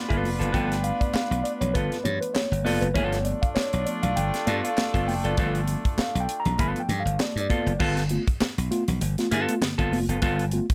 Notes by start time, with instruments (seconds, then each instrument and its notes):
Already playing: horn section B3 D4 F4 B4
0.09 slap bass G1, clean electric guitar B3 F4 A4, kick, closed hi-hat
0.23 slap bass F1, open hi-hat, high conga
0.39 slap bass F#1, clean electric guitar B3 F4 A4, closed hi-hat
0.52 slap bass G1, tine electric piano F3 A3 B3 G5, clean electric guitar B3 F4 A4, kick, closed hi-hat, muted conga
0.72 snare, closed hi-hat
0.84 tine electric piano F5, closed hi-hat
1.00 tine electric piano D5, kick, closed hi-hat
1.13 tine electric piano F5, muted slap bass stroke, snare, clap, high conga
1.31 slap bass B1, closed hi-hat
1.44 tine electric piano D5, closed hi-hat
1.61 slap bass B1, tine electric piano C#5, closed hi-hat, low conga
1.74 slap bass G1, clean electric guitar B3 F4 A4, tine electric piano B4, kick, closed hi-hat, muted conga
1.92 snare, closed hi-hat
2.04 slap bass G2, tine electric piano C#5, closed hi-hat, muted conga, low conga
2.21 tine electric piano B4, closed hi-hat
2.34 tine electric piano C#5, snare, clap, high conga
2.52 slap bass G1, closed hi-hat
2.65 slap bass F1, clean electric guitar B3 F4 A4, tine electric piano D5, open hi-hat, high conga
2.81 slap bass F#1, tine electric piano B4, closed hi-hat
2.94 slap bass G1, tine electric piano F3 A3 B3 C#5, horn section A3 D4 F4 A4, clean electric guitar B3 F4 A4, kick, closed hi-hat, muted conga
3.13 snare, closed hi-hat
3.25 tine electric piano D5, closed hi-hat, muted conga
3.42 tine electric piano F5, kick, closed hi-hat
3.55 tine electric piano C#5, muted slap bass stroke, snare, clap, high conga
3.73 slap bass B1, closed hi-hat
3.86 tine electric piano F3 A3 B3 D5, closed hi-hat
4.03 slap bass B1, tine electric piano F5, closed hi-hat, low conga
4.16 slap bass G1, tine electric piano G5, closed hi-hat, muted conga
4.34 snare, closed hi-hat
4.47 slap bass G2, clean electric guitar B3 F4 A4, tine electric piano D5, closed hi-hat, muted conga
4.64 tine electric piano F5, closed hi-hat
4.77 snare, clap, high conga
4.94 slap bass G1, clean electric guitar B3 F4 A4, kick, closed hi-hat
5.08 slap bass F1, tine electric piano G5, open hi-hat, high conga
5.24 slap bass F#1, clean electric guitar B3 F4 A4, tine electric piano D5, closed hi-hat
5.37 slap bass G1, tine electric piano F3 A3 B3, clean electric guitar B3 F4 A4, kick, closed hi-hat, muted conga
5.55 closed hi-hat
5.67 closed hi-hat
5.85 kick, closed hi-hat
5.98 tine electric piano F5, muted slap bass stroke, snare, clap, high conga
6.15 slap bass B1, closed hi-hat
6.20 tine electric piano G5
6.29 closed hi-hat
6.40 tine electric piano A#5
6.45 slap bass B1, closed hi-hat, low conga
6.58 slap bass G1, tine electric piano F3 A3 B3 B5, clean electric guitar B3 F4 A4, kick, closed hi-hat, muted conga
6.76 tine electric piano G5, closed hi-hat
6.89 slap bass G2, closed hi-hat, muted conga, low conga
7.00 tine electric piano F5
7.05 slap bass G1, closed hi-hat
7.19 tine electric piano D5, snare, clap, high conga
7.36 slap bass G2, closed hi-hat
7.41 tine electric piano D5
7.49 clean electric guitar B3 F4 A4, kick, closed hi-hat, high conga
7.66 slap bass F#1, closed hi-hat
7.80 slap bass G1, tine electric piano G2 D3, clean electric guitar B3 F4 A4, kick, crash, muted conga
7.97 tine electric piano B3 F4, snare, closed hi-hat
8.09 tine electric piano A3 B3 F4, closed hi-hat, muted conga
8.28 kick, closed hi-hat
8.41 muted slap bass stroke, snare, clap, high conga
8.58 slap bass B1, closed hi-hat
8.71 tine electric piano A3 B3 F4, closed hi-hat
8.88 slap bass B1, closed hi-hat, low conga
9.01 slap bass G1, closed hi-hat, muted conga
9.18 tine electric piano A3 B3 F4, snare, closed hi-hat
9.31 slap bass G2, tine electric piano G2 D3, clean electric guitar B3 F4 A4, closed hi-hat, muted conga
9.49 tine electric piano A3 B3 F4, closed hi-hat
9.62 tine electric piano G2 D3, snare, clap, high conga
9.78 slap bass G1, clean electric guitar B3 F4 A4, kick, closed hi-hat
9.92 slap bass F1, tine electric piano A3 B3 F4, open hi-hat, high conga
10.08 slap bass F#1, clean electric guitar B3 F4 A4, closed hi-hat
10.22 slap bass G1, tine electric piano G2 D3, clean electric guitar B3 F4 A4, kick, closed hi-hat, muted conga
10.39 tine electric piano B3 F4, closed hi-hat
10.51 tine electric piano A3 B3 F4, closed hi-hat
10.70 kick, closed hi-hat